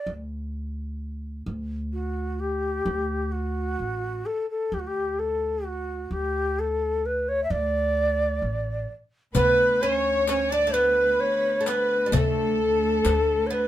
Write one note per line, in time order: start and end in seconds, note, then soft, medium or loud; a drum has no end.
0.06 1.42 D2 medium
1.46 2.82 D2 medium
1.93 2.41 F#4 medium
2.40 3.33 G4 medium
2.85 3.74 D2 medium
3.32 4.27 F#4 medium
3.79 4.21 A1 medium
4.26 4.48 A4 medium
4.50 4.75 A4 medium
4.72 6.07 D2 medium
4.72 4.81 G4 medium
4.79 4.89 F#4 medium
4.87 5.21 G4 medium
5.19 5.67 A4 medium
5.66 6.14 F#4 medium
6.11 7.45 D2 medium
6.11 6.61 G4 medium
6.59 7.07 A4 medium
7.06 7.30 B4 medium
7.28 7.43 C#5 medium
7.43 7.52 E5 medium
7.50 8.38 D2 medium
7.50 8.89 D5 medium
8.42 8.84 A1 medium
9.34 13.68 D2 medium
9.34 11.16 D2 medium
9.34 9.83 B3 medium
9.34 9.77 B4 medium
9.34 9.83 B4 loud
9.34 riq medium
9.34 darbuka dum medium
9.80 10.28 C#4 medium
9.80 9.95 C5 medium
9.80 10.28 C#5 medium
9.95 10.50 C#5 medium
10.27 10.52 C#4 medium
10.27 10.52 C#5 medium
10.27 riq medium
10.27 darbuka tek medium
10.49 10.66 D4 medium
10.49 10.73 D5 medium
10.49 10.75 D5 loud
10.67 10.73 A3 medium
10.74 11.60 B3 medium
10.74 11.22 B4 loud
10.74 11.65 B4 medium
10.74 darbuka ka soft
11.20 11.70 C#5 medium
11.20 darbuka ka soft
11.61 11.67 A3 medium
11.66 12.06 B3 medium
11.66 12.09 B4 medium
11.66 12.13 B4 medium
11.66 riq soft
11.66 darbuka tek medium
12.06 12.13 G3 medium
12.12 13.01 D2 medium
12.12 13.50 A3 medium
12.12 13.51 A4 medium
12.12 13.48 A4 medium
12.12 riq medium
12.12 darbuka dum medium
13.05 13.68 D2 medium
13.05 riq medium
13.05 darbuka tek medium
13.47 13.68 B3 medium
13.47 13.68 B4 medium
13.47 13.55 C#5 medium
13.53 13.68 B4 medium
13.53 darbuka ka soft